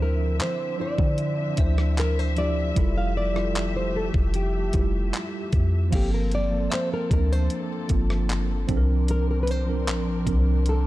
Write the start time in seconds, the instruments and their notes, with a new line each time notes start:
Already playing: 808-style bass D2, string section D3 F3 C4 E5, tine electric piano F3 D4 E4 C5
0.02 nylon-string guitar A#4
0.39 808-style bass F3, nylon-string guitar C5, synth bell E5, clap, closed hi-hat
0.78 tine electric piano F3 D4 E4 C5, nylon-string guitar D5
0.98 808-style bass D3, kick
1.18 closed hi-hat
1.57 808-style bass D2, tine electric piano F3 D4 E4 C5, synth bell E5, kick, closed hi-hat
1.64 nylon-string guitar C5
1.78 cross-stick
1.98 nylon-string guitar A#4, clap, closed hi-hat
2.19 nylon-string guitar C5
2.36 tine electric piano F3 D4 E4 G4, nylon-string guitar D5, closed hi-hat
2.75 808-style bass F1, tine electric piano G3 E4 F4 A4, string section A3 G4, kick, closed hi-hat
2.98 nylon-string guitar F5
3.17 nylon-string guitar D5
3.34 tine electric piano G3 E4 F4 G4, cross-stick
3.44 tine electric piano A4
3.55 clap, closed hi-hat
3.76 nylon-string guitar C5
3.96 nylon-string guitar A4
4.14 808-style bass F1, kick
4.34 nylon-string guitar G4, closed hi-hat
4.73 808-style bass F1, tine electric piano G3 E4 F4 G4, kick, closed hi-hat
5.13 clap, closed hi-hat
5.53 808-style bass F2, kick, closed hi-hat
5.91 808-style bass G1, tine electric piano F3 A#3 C4 A4, string section F3 A#3 C4 A4, synth bell F5, kick, closed hi-hat, crash
5.95 nylon-string guitar G4
6.14 nylon-string guitar A#4
6.32 nylon-string guitar D5, closed hi-hat
6.50 tine electric piano F3 A#3 C4 A4
6.70 nylon-string guitar C5, synth bell E5, clap, closed hi-hat
6.94 nylon-string guitar A#4
7.09 808-style bass D2, tine electric piano F3 A#3 C4 D4, nylon-string guitar A#4, kick, closed hi-hat
7.33 nylon-string guitar C5
7.50 closed hi-hat
7.88 808-style bass G1, tine electric piano F3 A#3 C4 F4, kick, closed hi-hat
8.10 cross-stick
8.29 clap, closed hi-hat
8.67 808-style bass C2, tine electric piano F3 C4 D4 A4, string section C4 D4 A#4, kick, closed hi-hat
8.77 tine electric piano A#4
9.08 nylon-string guitar A#4, closed hi-hat
9.31 nylon-string guitar A#4
9.43 nylon-string guitar B4
9.47 nylon-string guitar C5, closed hi-hat
9.66 tine electric piano F3 C4 D4 A#4
9.87 808-style bass A#1, clap, closed hi-hat
10.25 808-style bass C2, tine electric piano F3 C4 D4 A#4, kick, closed hi-hat
10.66 nylon-string guitar A4, closed hi-hat